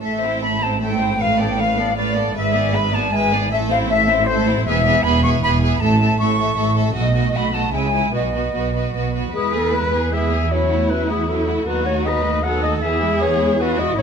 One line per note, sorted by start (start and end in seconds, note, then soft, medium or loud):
0.02 2.32 A1 soft
0.02 2.32 A2 soft
0.02 0.21 A3 soft
0.02 0.20 A4 soft
0.02 0.38 E5 medium
0.02 0.20 E5 soft
0.21 0.42 C4 soft
0.21 0.41 E4 soft
0.21 0.41 C5 soft
0.41 0.61 A3 soft
0.41 0.60 A4 soft
0.41 0.60 E5 soft
0.41 0.61 B5 medium
0.61 0.81 C4 soft
0.61 0.80 E4 soft
0.61 0.80 C5 soft
0.61 0.81 A5 medium
0.80 0.99 A3 soft
0.80 0.99 A4 soft
0.80 0.98 E5 soft
0.80 1.19 G5 medium
1.00 1.20 C4 soft
1.00 1.20 E4 soft
1.00 1.20 C5 soft
1.18 1.38 A3 soft
1.18 1.37 B4 soft
1.18 1.38 F5 soft
1.18 1.39 F5 medium
1.39 1.58 B3 soft
1.39 1.58 A4 soft
1.39 1.58 D5 soft
1.39 1.58 G5 medium
1.58 1.77 A3 soft
1.58 1.78 B4 soft
1.58 1.97 F5 medium
1.58 1.78 F5 soft
1.78 1.97 B3 soft
1.78 1.97 A4 soft
1.78 1.97 D5 soft
1.97 2.15 A3 soft
1.97 2.15 B4 soft
1.97 2.35 D5 medium
1.97 2.16 F5 soft
2.16 2.36 B3 soft
2.16 2.35 A4 soft
2.16 2.36 D5 soft
2.36 3.49 G#1 soft
2.36 3.49 G#2 medium
2.36 2.54 G#3 soft
2.36 2.54 B4 soft
2.36 2.54 E5 soft
2.36 2.74 E5 medium
2.54 2.74 B3 soft
2.54 2.73 G#4 soft
2.54 2.74 D5 soft
2.73 2.93 G#3 soft
2.73 2.93 B4 soft
2.73 2.94 E5 soft
2.73 2.93 B5 medium
2.93 3.13 B3 soft
2.93 3.13 G#4 soft
2.93 3.13 D5 soft
2.93 3.13 A5 medium
3.13 3.31 G#3 soft
3.13 3.31 B4 soft
3.13 3.31 E5 soft
3.13 3.52 G#5 medium
3.32 3.51 B3 soft
3.32 3.51 G#4 soft
3.32 3.52 D5 soft
3.51 4.66 A1 medium
3.51 4.67 A2 medium
3.51 3.69 A3 soft
3.51 3.69 A4 soft
3.51 3.58 E5 medium
3.51 3.69 E5 soft
3.71 3.90 C4 soft
3.71 3.90 E4 soft
3.71 3.90 C5 soft
3.71 3.77 F5 medium
3.89 4.09 A3 medium
3.89 4.09 A4 soft
3.89 4.27 E5 medium
3.89 4.09 E5 soft
4.08 4.28 C4 soft
4.08 4.28 E4 soft
4.08 4.28 C5 soft
4.28 4.46 A3 medium
4.28 4.46 A4 medium
4.28 4.66 C5 medium
4.28 4.46 E5 soft
4.48 4.67 C4 soft
4.48 4.67 E4 soft
4.48 4.67 C5 soft
4.66 5.00 E1 medium
4.66 5.00 E2 medium
4.66 4.85 B3 soft
4.66 4.84 G#4 medium
4.66 5.03 E5 medium
4.66 4.85 E5 soft
4.85 5.04 B3 soft
4.85 5.04 G#4 soft
4.85 5.04 E5 soft
5.04 5.38 E1 medium
5.04 5.38 E2 medium
5.04 5.22 B3 soft
5.04 5.24 G#4 soft
5.04 5.23 E5 medium
5.04 5.23 B5 medium
5.23 5.42 B3 soft
5.23 5.42 G#4 soft
5.23 5.43 E5 medium
5.23 5.29 C#6 medium
5.43 5.77 E1 medium
5.43 5.77 E2 medium
5.43 5.61 B3 soft
5.43 5.62 G#4 medium
5.43 5.62 E5 soft
5.43 5.50 B5 medium
5.62 5.81 B3 soft
5.62 5.82 G#4 medium
5.62 5.81 E5 soft
5.75 5.82 B5 medium
5.80 6.15 A1 medium
5.80 6.16 A2 medium
5.80 6.00 A3 medium
5.80 5.99 A4 medium
5.80 6.00 E5 soft
5.80 6.19 A5 medium
6.01 6.20 A3 soft
6.01 6.18 A4 soft
6.01 6.19 E5 soft
6.19 6.53 A1 medium
6.19 6.53 A2 medium
6.19 6.38 A3 soft
6.19 6.38 A4 soft
6.19 6.38 E5 soft
6.19 6.75 C#6 medium
6.39 6.56 A3 soft
6.39 6.55 A4 soft
6.39 6.56 E5 soft
6.56 6.91 A1 medium
6.56 6.92 A2 medium
6.56 6.75 A3 soft
6.56 6.73 A4 soft
6.56 6.76 E5 soft
6.75 6.95 A3 soft
6.75 6.94 A4 soft
6.75 6.96 E5 soft
6.94 7.30 B1 medium
6.94 7.30 B2 medium
6.94 7.13 A3 soft
6.94 7.12 F#4 soft
6.94 7.15 D#5 soft
6.94 7.32 D#5 medium
7.13 7.33 A3 soft
7.13 7.30 F#4 soft
7.13 7.34 D#5 soft
7.31 7.69 B1 soft
7.31 7.69 B2 soft
7.31 7.52 A3 soft
7.31 7.50 F#4 soft
7.31 7.53 D#5 soft
7.31 7.54 B5 medium
7.51 7.73 A3 soft
7.51 7.72 F#4 soft
7.51 7.74 D#5 soft
7.51 7.74 A5 medium
7.72 8.09 C#2 soft
7.72 8.10 C#3 soft
7.72 7.91 G#3 soft
7.72 7.91 E4 soft
7.72 7.94 E5 soft
7.72 8.12 G#5 medium
7.92 8.13 G#3 soft
7.92 8.13 E4 soft
7.92 8.14 E5 soft
8.13 8.49 B1 soft
8.13 8.50 B2 soft
8.13 8.33 B3 soft
8.13 8.33 F#4 soft
8.13 8.35 B4 soft
8.13 9.12 D#5 soft
8.34 8.53 B3 soft
8.34 8.52 F#4 soft
8.34 8.54 B4 soft
8.53 8.89 B1 soft
8.53 8.89 B2 soft
8.53 8.73 B3 soft
8.53 8.73 F#4 soft
8.53 8.74 B4 soft
8.74 8.93 B3 soft
8.74 8.94 F#4 soft
8.74 8.94 B4 soft
8.94 9.30 B1 soft
8.94 9.30 B2 soft
8.94 9.13 B3 soft
8.94 9.13 F#4 soft
8.94 9.13 B4 soft
9.14 9.34 B3 soft
9.14 9.34 F#4 soft
9.14 9.34 B4 soft
9.34 11.64 E2 soft
9.34 9.53 G#3 soft
9.34 9.53 E4 soft
9.34 9.53 G#4 medium
9.34 10.08 B4 soft
9.34 9.53 B4 soft
9.53 9.74 B3 soft
9.53 9.73 G#4 soft
9.53 9.74 G#4 soft
9.53 9.75 A4 medium
9.73 9.93 G#3 soft
9.73 9.93 E4 soft
9.73 9.93 B4 soft
9.73 10.15 B4 medium
9.93 10.12 B3 soft
9.93 10.12 G#4 soft
10.11 10.30 G#3 soft
10.11 10.30 E4 soft
10.11 10.51 G#4 soft
10.11 10.30 B4 soft
10.11 10.53 E5 soft
10.31 10.50 B3 soft
10.31 10.51 G#4 soft
10.50 10.68 F#3 soft
10.50 10.69 C#4 soft
10.50 10.69 E4 soft
10.50 11.65 E4 soft
10.50 10.91 C#5 medium
10.70 10.89 A3 soft
10.70 10.90 E4 soft
10.70 10.90 F#4 soft
10.89 11.09 F#3 soft
10.89 11.09 C#4 soft
10.89 11.09 E4 soft
10.89 11.09 B4 medium
11.08 11.28 A3 soft
11.08 11.29 E4 soft
11.08 11.29 F#4 soft
11.08 11.30 G#4 soft
11.28 11.46 F#3 soft
11.28 11.47 C#4 soft
11.28 11.47 E4 soft
11.28 11.68 A4 soft
11.48 11.67 A3 soft
11.48 11.68 E4 soft
11.48 11.68 F#4 soft
11.67 12.80 D#2 soft
11.67 11.85 F#3 soft
11.67 11.85 B3 soft
11.67 11.86 D#4 soft
11.67 12.05 F#4 soft
11.67 11.85 B4 medium
11.86 12.05 A3 soft
11.86 12.05 D#4 soft
11.86 12.06 F#4 soft
11.86 11.95 C#5 medium
12.05 12.25 F#3 soft
12.05 12.25 B3 soft
12.05 12.25 D#4 soft
12.05 12.45 B4 soft
12.05 12.45 D#5 medium
12.24 12.44 A3 soft
12.24 12.44 D#4 soft
12.24 12.45 F#4 soft
12.43 12.62 F#3 soft
12.43 12.62 B3 soft
12.43 12.62 D#4 soft
12.43 12.82 A4 medium
12.43 12.62 F#5 medium
12.63 12.83 A3 soft
12.63 12.83 D#4 soft
12.63 12.83 F#4 soft
12.63 12.72 D#5 medium
12.81 13.97 E2 soft
12.81 13.01 E3 soft
12.81 13.00 B3 soft
12.81 13.01 G#4 soft
12.81 13.59 G#4 medium
12.81 13.19 E5 medium
13.02 13.21 G#3 soft
13.02 13.21 E4 soft
13.21 13.40 E3 soft
13.21 13.40 B3 soft
13.21 13.40 G#4 soft
13.21 13.61 C#5 medium
13.40 13.59 G#3 soft
13.40 13.59 E4 soft
13.40 13.60 E4 soft
13.58 13.77 E3 soft
13.58 13.76 B3 soft
13.58 13.97 F#4 medium
13.58 13.77 G#4 soft
13.58 13.80 B4 medium
13.78 13.98 G#3 soft
13.78 13.97 E4 soft
13.78 13.97 D#5 medium
13.97 14.02 A1 medium
13.97 14.02 A3 soft
13.97 14.02 C#4 soft
13.97 14.02 E4 medium
13.97 14.02 C#5 medium